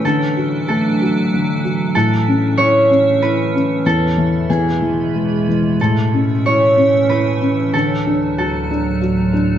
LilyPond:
<<
  \new Staff \with { instrumentName = "Harp" } { \time 3/4 \key a \major \tempo 4 = 94 a'4 a'4. r8 | a'4 cis''4 b'4 | a'4 gis'4. r8 | a'4 cis''4 b'4 |
a'4 a'4. r8 | }
  \new Staff \with { instrumentName = "Felt piano" } { \time 3/4 \key a \major d8 fis'8 a8 fis'8 d8 fis'8 | a,8 cis'8 e'8 cis'8 e'8 cis'8 | e,8 e8 e,8 e8 gis8 e8 | a,8 cis'8 e'8 cis'8 e'8 cis'8 |
d8 d'8 fis'8 d'8 fis'8 d'8 | }
  \new Staff \with { instrumentName = "Ambient pad" } { \clef bass \time 3/4 \key a \major << { d'2. | <a, cis'>2. | e,2. | <a, cis'>2. |
<d, fis>2. | } \\ { <e fis>2.~ | <e fis>2. | r2. | e2. |
r2. | } >> }
>>